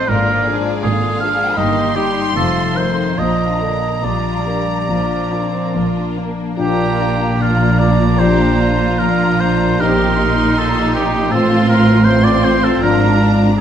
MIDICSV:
0, 0, Header, 1, 9, 480
1, 0, Start_track
1, 0, Key_signature, -2, "major"
1, 0, Tempo, 739827
1, 67, Time_signature, 4, 2, 24, 8
1, 1026, Tempo, 781250
1, 1506, Tempo, 845070
1, 3906, Tempo, 805369
1, 5826, Tempo, 752823
1, 8247, End_track
2, 0, Start_track
2, 0, Title_t, "Violin section"
2, 0, Program_c, 0, 48
2, 60, Note_on_c, 0, 74, 48
2, 532, Note_off_c, 0, 74, 0
2, 545, Note_on_c, 0, 77, 49
2, 1012, Note_on_c, 0, 84, 56
2, 1026, Note_off_c, 0, 77, 0
2, 1967, Note_off_c, 0, 84, 0
2, 1971, Note_on_c, 0, 82, 37
2, 3667, Note_off_c, 0, 82, 0
2, 3902, Note_on_c, 0, 82, 41
2, 4365, Note_off_c, 0, 82, 0
2, 4391, Note_on_c, 0, 82, 45
2, 5330, Note_off_c, 0, 82, 0
2, 5342, Note_on_c, 0, 82, 46
2, 5815, Note_off_c, 0, 82, 0
2, 5829, Note_on_c, 0, 84, 45
2, 6779, Note_off_c, 0, 84, 0
2, 6787, Note_on_c, 0, 84, 48
2, 7248, Note_off_c, 0, 84, 0
2, 7264, Note_on_c, 0, 84, 52
2, 7738, Note_off_c, 0, 84, 0
2, 7750, Note_on_c, 0, 82, 54
2, 8222, Note_off_c, 0, 82, 0
2, 8247, End_track
3, 0, Start_track
3, 0, Title_t, "Oboe"
3, 0, Program_c, 1, 68
3, 0, Note_on_c, 1, 72, 70
3, 57, Note_on_c, 1, 70, 65
3, 67, Note_off_c, 1, 72, 0
3, 374, Note_off_c, 1, 70, 0
3, 535, Note_on_c, 1, 68, 52
3, 761, Note_off_c, 1, 68, 0
3, 778, Note_on_c, 1, 77, 60
3, 1019, Note_on_c, 1, 75, 59
3, 1029, Note_off_c, 1, 77, 0
3, 1257, Note_on_c, 1, 67, 49
3, 1266, Note_off_c, 1, 75, 0
3, 1504, Note_off_c, 1, 67, 0
3, 1508, Note_on_c, 1, 69, 51
3, 1737, Note_on_c, 1, 72, 51
3, 1745, Note_off_c, 1, 69, 0
3, 1974, Note_on_c, 1, 75, 58
3, 1982, Note_off_c, 1, 72, 0
3, 2458, Note_on_c, 1, 74, 41
3, 2466, Note_off_c, 1, 75, 0
3, 3668, Note_off_c, 1, 74, 0
3, 3903, Note_on_c, 1, 67, 65
3, 4398, Note_on_c, 1, 65, 49
3, 4407, Note_off_c, 1, 67, 0
3, 4624, Note_on_c, 1, 74, 54
3, 4633, Note_off_c, 1, 65, 0
3, 4861, Note_on_c, 1, 72, 60
3, 4869, Note_off_c, 1, 74, 0
3, 5339, Note_on_c, 1, 70, 63
3, 5348, Note_off_c, 1, 72, 0
3, 5585, Note_on_c, 1, 72, 67
3, 5594, Note_off_c, 1, 70, 0
3, 5824, Note_on_c, 1, 70, 70
3, 5834, Note_off_c, 1, 72, 0
3, 6319, Note_on_c, 1, 69, 63
3, 6328, Note_off_c, 1, 70, 0
3, 6548, Note_off_c, 1, 69, 0
3, 6552, Note_on_c, 1, 67, 60
3, 6790, Note_on_c, 1, 69, 73
3, 6800, Note_off_c, 1, 67, 0
3, 7022, Note_off_c, 1, 69, 0
3, 7025, Note_on_c, 1, 70, 66
3, 7254, Note_on_c, 1, 72, 78
3, 7263, Note_off_c, 1, 70, 0
3, 7374, Note_on_c, 1, 74, 68
3, 7383, Note_off_c, 1, 72, 0
3, 7505, Note_on_c, 1, 72, 75
3, 7515, Note_off_c, 1, 74, 0
3, 7631, Note_on_c, 1, 69, 65
3, 7640, Note_off_c, 1, 72, 0
3, 7746, Note_on_c, 1, 70, 82
3, 7755, Note_off_c, 1, 69, 0
3, 8063, Note_off_c, 1, 70, 0
3, 8247, End_track
4, 0, Start_track
4, 0, Title_t, "Violin section"
4, 0, Program_c, 2, 48
4, 0, Note_on_c, 2, 60, 36
4, 0, Note_on_c, 2, 69, 39
4, 67, Note_off_c, 2, 69, 0
4, 68, Note_off_c, 2, 60, 0
4, 71, Note_on_c, 2, 65, 40
4, 72, Note_off_c, 2, 65, 0
4, 72, Note_on_c, 2, 65, 41
4, 294, Note_off_c, 2, 65, 0
4, 302, Note_on_c, 2, 62, 35
4, 303, Note_on_c, 2, 68, 35
4, 541, Note_on_c, 2, 65, 34
4, 542, Note_off_c, 2, 65, 0
4, 542, Note_on_c, 2, 65, 35
4, 543, Note_off_c, 2, 62, 0
4, 543, Note_off_c, 2, 68, 0
4, 780, Note_on_c, 2, 62, 36
4, 780, Note_on_c, 2, 68, 38
4, 782, Note_off_c, 2, 65, 0
4, 1021, Note_on_c, 2, 67, 36
4, 1022, Note_on_c, 2, 63, 35
4, 1025, Note_off_c, 2, 62, 0
4, 1025, Note_off_c, 2, 68, 0
4, 1243, Note_off_c, 2, 67, 0
4, 1244, Note_off_c, 2, 63, 0
4, 1258, Note_on_c, 2, 67, 33
4, 1260, Note_on_c, 2, 63, 31
4, 1497, Note_on_c, 2, 65, 32
4, 1498, Note_on_c, 2, 57, 35
4, 1504, Note_off_c, 2, 67, 0
4, 1505, Note_off_c, 2, 63, 0
4, 1717, Note_off_c, 2, 65, 0
4, 1718, Note_off_c, 2, 57, 0
4, 1734, Note_on_c, 2, 60, 29
4, 1734, Note_on_c, 2, 63, 31
4, 1969, Note_on_c, 2, 65, 28
4, 1972, Note_off_c, 2, 60, 0
4, 1972, Note_off_c, 2, 63, 0
4, 1972, Note_on_c, 2, 62, 28
4, 2195, Note_off_c, 2, 65, 0
4, 2196, Note_off_c, 2, 62, 0
4, 2207, Note_on_c, 2, 62, 26
4, 2209, Note_on_c, 2, 58, 26
4, 2453, Note_off_c, 2, 62, 0
4, 2456, Note_off_c, 2, 58, 0
4, 2458, Note_on_c, 2, 65, 28
4, 2460, Note_on_c, 2, 62, 28
4, 2700, Note_off_c, 2, 62, 0
4, 2703, Note_off_c, 2, 65, 0
4, 2706, Note_on_c, 2, 58, 28
4, 2707, Note_on_c, 2, 62, 28
4, 2949, Note_off_c, 2, 58, 0
4, 2949, Note_off_c, 2, 62, 0
4, 2955, Note_on_c, 2, 62, 29
4, 2957, Note_on_c, 2, 65, 27
4, 3177, Note_off_c, 2, 62, 0
4, 3178, Note_off_c, 2, 65, 0
4, 3189, Note_on_c, 2, 62, 25
4, 3191, Note_on_c, 2, 58, 25
4, 3428, Note_off_c, 2, 62, 0
4, 3429, Note_off_c, 2, 58, 0
4, 3441, Note_on_c, 2, 65, 27
4, 3443, Note_on_c, 2, 62, 28
4, 3673, Note_off_c, 2, 62, 0
4, 3675, Note_off_c, 2, 65, 0
4, 3677, Note_on_c, 2, 58, 28
4, 3680, Note_on_c, 2, 62, 28
4, 3911, Note_off_c, 2, 58, 0
4, 3913, Note_off_c, 2, 62, 0
4, 3920, Note_on_c, 2, 58, 45
4, 4850, Note_off_c, 2, 58, 0
4, 4868, Note_on_c, 2, 67, 51
4, 5107, Note_off_c, 2, 67, 0
4, 5110, Note_on_c, 2, 65, 41
4, 5829, Note_off_c, 2, 65, 0
4, 5830, Note_on_c, 2, 67, 50
4, 6067, Note_off_c, 2, 67, 0
4, 6071, Note_on_c, 2, 63, 57
4, 6785, Note_off_c, 2, 63, 0
4, 6791, Note_on_c, 2, 65, 58
4, 7259, Note_off_c, 2, 65, 0
4, 7263, Note_on_c, 2, 60, 61
4, 7737, Note_off_c, 2, 60, 0
4, 7748, Note_on_c, 2, 62, 53
4, 8230, Note_off_c, 2, 62, 0
4, 8247, End_track
5, 0, Start_track
5, 0, Title_t, "Harp"
5, 0, Program_c, 3, 46
5, 0, Note_on_c, 3, 45, 45
5, 0, Note_on_c, 3, 57, 36
5, 0, Note_on_c, 3, 60, 33
5, 0, Note_on_c, 3, 65, 38
5, 65, Note_on_c, 3, 44, 43
5, 86, Note_off_c, 3, 45, 0
5, 87, Note_off_c, 3, 57, 0
5, 87, Note_off_c, 3, 60, 0
5, 297, Note_off_c, 3, 65, 0
5, 305, Note_on_c, 3, 65, 39
5, 546, Note_on_c, 3, 56, 33
5, 781, Note_on_c, 3, 58, 31
5, 1025, Note_on_c, 3, 43, 41
5, 1044, Note_off_c, 3, 44, 0
5, 1044, Note_off_c, 3, 65, 0
5, 1045, Note_off_c, 3, 56, 0
5, 1261, Note_on_c, 3, 63, 29
5, 1265, Note_on_c, 3, 75, 29
5, 1510, Note_on_c, 3, 41, 41
5, 1523, Note_off_c, 3, 58, 0
5, 1524, Note_off_c, 3, 43, 0
5, 1740, Note_off_c, 3, 75, 0
5, 1744, Note_on_c, 3, 65, 26
5, 1747, Note_on_c, 3, 75, 29
5, 1975, Note_on_c, 3, 46, 33
5, 1993, Note_off_c, 3, 63, 0
5, 1995, Note_off_c, 3, 41, 0
5, 1997, Note_off_c, 3, 75, 0
5, 2205, Note_off_c, 3, 65, 0
5, 2212, Note_on_c, 3, 65, 25
5, 2461, Note_on_c, 3, 53, 24
5, 2707, Note_on_c, 3, 58, 26
5, 2940, Note_off_c, 3, 53, 0
5, 2947, Note_on_c, 3, 53, 25
5, 3183, Note_off_c, 3, 65, 0
5, 3190, Note_on_c, 3, 65, 25
5, 3423, Note_off_c, 3, 53, 0
5, 3430, Note_on_c, 3, 53, 27
5, 3662, Note_off_c, 3, 58, 0
5, 3669, Note_on_c, 3, 58, 23
5, 3901, Note_off_c, 3, 46, 0
5, 3907, Note_on_c, 3, 46, 40
5, 4149, Note_off_c, 3, 65, 0
5, 4156, Note_on_c, 3, 65, 36
5, 4383, Note_off_c, 3, 53, 0
5, 4390, Note_on_c, 3, 53, 36
5, 4621, Note_off_c, 3, 58, 0
5, 4628, Note_on_c, 3, 58, 32
5, 4863, Note_off_c, 3, 53, 0
5, 4870, Note_on_c, 3, 53, 37
5, 5096, Note_off_c, 3, 65, 0
5, 5103, Note_on_c, 3, 65, 33
5, 5342, Note_off_c, 3, 53, 0
5, 5349, Note_on_c, 3, 53, 37
5, 5587, Note_off_c, 3, 58, 0
5, 5594, Note_on_c, 3, 58, 37
5, 5823, Note_off_c, 3, 46, 0
5, 5830, Note_on_c, 3, 46, 44
5, 5845, Note_off_c, 3, 65, 0
5, 5847, Note_off_c, 3, 53, 0
5, 6075, Note_on_c, 3, 63, 38
5, 6306, Note_off_c, 3, 58, 0
5, 6314, Note_on_c, 3, 58, 38
5, 6554, Note_on_c, 3, 60, 38
5, 6783, Note_on_c, 3, 45, 49
5, 6804, Note_off_c, 3, 58, 0
5, 6805, Note_off_c, 3, 46, 0
5, 6806, Note_off_c, 3, 63, 0
5, 7016, Note_on_c, 3, 65, 37
5, 7261, Note_on_c, 3, 57, 41
5, 7497, Note_off_c, 3, 60, 0
5, 7505, Note_on_c, 3, 60, 41
5, 7747, Note_on_c, 3, 44, 54
5, 7763, Note_off_c, 3, 45, 0
5, 7766, Note_off_c, 3, 57, 0
5, 7767, Note_off_c, 3, 60, 0
5, 7985, Note_off_c, 3, 65, 0
5, 7992, Note_on_c, 3, 65, 43
5, 8247, Note_off_c, 3, 44, 0
5, 8247, Note_off_c, 3, 65, 0
5, 8247, End_track
6, 0, Start_track
6, 0, Title_t, "Viola section"
6, 0, Program_c, 4, 48
6, 0, Note_on_c, 4, 53, 38
6, 0, Note_on_c, 4, 60, 39
6, 71, Note_off_c, 4, 53, 0
6, 72, Note_off_c, 4, 60, 0
6, 74, Note_on_c, 4, 58, 39
6, 75, Note_on_c, 4, 50, 43
6, 295, Note_off_c, 4, 50, 0
6, 295, Note_off_c, 4, 58, 0
6, 312, Note_on_c, 4, 53, 36
6, 315, Note_on_c, 4, 56, 36
6, 547, Note_off_c, 4, 53, 0
6, 547, Note_on_c, 4, 50, 36
6, 547, Note_on_c, 4, 58, 34
6, 549, Note_off_c, 4, 56, 0
6, 785, Note_off_c, 4, 50, 0
6, 785, Note_off_c, 4, 58, 0
6, 788, Note_on_c, 4, 53, 35
6, 788, Note_on_c, 4, 56, 37
6, 1023, Note_on_c, 4, 58, 39
6, 1024, Note_on_c, 4, 51, 39
6, 1028, Note_off_c, 4, 53, 0
6, 1029, Note_off_c, 4, 56, 0
6, 1244, Note_off_c, 4, 51, 0
6, 1244, Note_off_c, 4, 58, 0
6, 1260, Note_on_c, 4, 55, 36
6, 1262, Note_off_c, 4, 55, 0
6, 1262, Note_on_c, 4, 55, 38
6, 1504, Note_on_c, 4, 53, 35
6, 1505, Note_off_c, 4, 53, 0
6, 1505, Note_on_c, 4, 53, 37
6, 1506, Note_off_c, 4, 55, 0
6, 1721, Note_off_c, 4, 53, 0
6, 1735, Note_on_c, 4, 51, 30
6, 1736, Note_on_c, 4, 57, 31
6, 1972, Note_off_c, 4, 51, 0
6, 1973, Note_off_c, 4, 57, 0
6, 1976, Note_on_c, 4, 53, 30
6, 1977, Note_off_c, 4, 53, 0
6, 1977, Note_on_c, 4, 53, 30
6, 2199, Note_off_c, 4, 53, 0
6, 2215, Note_on_c, 4, 50, 27
6, 2218, Note_off_c, 4, 50, 0
6, 2218, Note_on_c, 4, 50, 28
6, 2458, Note_on_c, 4, 55, 38
6, 2460, Note_off_c, 4, 50, 0
6, 2924, Note_off_c, 4, 55, 0
6, 2954, Note_on_c, 4, 53, 33
6, 3193, Note_off_c, 4, 53, 0
6, 3194, Note_on_c, 4, 60, 41
6, 3431, Note_off_c, 4, 60, 0
6, 3432, Note_on_c, 4, 58, 37
6, 3908, Note_off_c, 4, 58, 0
6, 3908, Note_on_c, 4, 62, 41
6, 3908, Note_on_c, 4, 65, 43
6, 4368, Note_off_c, 4, 62, 0
6, 4368, Note_off_c, 4, 65, 0
6, 4393, Note_on_c, 4, 65, 41
6, 4395, Note_on_c, 4, 62, 43
6, 5331, Note_off_c, 4, 65, 0
6, 5332, Note_off_c, 4, 62, 0
6, 5353, Note_on_c, 4, 62, 48
6, 5354, Note_on_c, 4, 65, 50
6, 5820, Note_off_c, 4, 62, 0
6, 5820, Note_off_c, 4, 65, 0
6, 5823, Note_on_c, 4, 63, 47
6, 5825, Note_on_c, 4, 67, 45
6, 6782, Note_off_c, 4, 63, 0
6, 6784, Note_off_c, 4, 67, 0
6, 6791, Note_on_c, 4, 60, 53
6, 6793, Note_on_c, 4, 65, 51
6, 7250, Note_off_c, 4, 60, 0
6, 7255, Note_off_c, 4, 65, 0
6, 7262, Note_on_c, 4, 60, 58
6, 7263, Note_on_c, 4, 65, 60
6, 7737, Note_off_c, 4, 60, 0
6, 7737, Note_off_c, 4, 65, 0
6, 7754, Note_on_c, 4, 62, 53
6, 7754, Note_on_c, 4, 65, 49
6, 8223, Note_off_c, 4, 65, 0
6, 8233, Note_off_c, 4, 62, 0
6, 8247, End_track
7, 0, Start_track
7, 0, Title_t, "French horn section"
7, 0, Program_c, 5, 60
7, 3897, Note_on_c, 5, 53, 44
7, 3899, Note_on_c, 5, 62, 42
7, 4081, Note_off_c, 5, 53, 0
7, 4082, Note_off_c, 5, 62, 0
7, 4864, Note_on_c, 5, 53, 40
7, 4865, Note_on_c, 5, 62, 40
7, 5041, Note_off_c, 5, 53, 0
7, 5041, Note_off_c, 5, 62, 0
7, 5826, Note_on_c, 5, 51, 46
7, 5828, Note_on_c, 5, 60, 53
7, 6002, Note_off_c, 5, 51, 0
7, 6003, Note_off_c, 5, 60, 0
7, 6785, Note_on_c, 5, 60, 47
7, 6787, Note_on_c, 5, 53, 48
7, 6952, Note_off_c, 5, 60, 0
7, 6953, Note_off_c, 5, 53, 0
7, 7741, Note_on_c, 5, 53, 56
7, 7749, Note_on_c, 5, 62, 55
7, 7920, Note_off_c, 5, 53, 0
7, 7924, Note_off_c, 5, 62, 0
7, 8247, End_track
8, 0, Start_track
8, 0, Title_t, "Cello section"
8, 0, Program_c, 6, 48
8, 58, Note_on_c, 6, 44, 49
8, 468, Note_off_c, 6, 44, 0
8, 541, Note_on_c, 6, 44, 52
8, 950, Note_off_c, 6, 44, 0
8, 1016, Note_on_c, 6, 43, 46
8, 1427, Note_off_c, 6, 43, 0
8, 1506, Note_on_c, 6, 41, 42
8, 1903, Note_off_c, 6, 41, 0
8, 1975, Note_on_c, 6, 46, 41
8, 2387, Note_off_c, 6, 46, 0
8, 2456, Note_on_c, 6, 46, 37
8, 2875, Note_off_c, 6, 46, 0
8, 2953, Note_on_c, 6, 46, 38
8, 3362, Note_off_c, 6, 46, 0
8, 3433, Note_on_c, 6, 46, 37
8, 3840, Note_off_c, 6, 46, 0
8, 3907, Note_on_c, 6, 46, 45
8, 5804, Note_off_c, 6, 46, 0
8, 5830, Note_on_c, 6, 46, 53
8, 6767, Note_off_c, 6, 46, 0
8, 6788, Note_on_c, 6, 45, 57
8, 7745, Note_off_c, 6, 45, 0
8, 7749, Note_on_c, 6, 44, 55
8, 8247, Note_off_c, 6, 44, 0
8, 8247, End_track
9, 0, Start_track
9, 0, Title_t, "Double bass section"
9, 0, Program_c, 7, 48
9, 68, Note_on_c, 7, 32, 55
9, 472, Note_off_c, 7, 32, 0
9, 544, Note_on_c, 7, 32, 50
9, 951, Note_off_c, 7, 32, 0
9, 1024, Note_on_c, 7, 31, 46
9, 1431, Note_off_c, 7, 31, 0
9, 1501, Note_on_c, 7, 29, 46
9, 1901, Note_off_c, 7, 29, 0
9, 1973, Note_on_c, 7, 34, 43
9, 2386, Note_off_c, 7, 34, 0
9, 2460, Note_on_c, 7, 34, 39
9, 2876, Note_off_c, 7, 34, 0
9, 2946, Note_on_c, 7, 34, 40
9, 3358, Note_off_c, 7, 34, 0
9, 3433, Note_on_c, 7, 34, 37
9, 3839, Note_off_c, 7, 34, 0
9, 3909, Note_on_c, 7, 34, 49
9, 5805, Note_off_c, 7, 34, 0
9, 5834, Note_on_c, 7, 34, 50
9, 6769, Note_off_c, 7, 34, 0
9, 6787, Note_on_c, 7, 33, 57
9, 7745, Note_off_c, 7, 33, 0
9, 7745, Note_on_c, 7, 32, 57
9, 8247, Note_off_c, 7, 32, 0
9, 8247, End_track
0, 0, End_of_file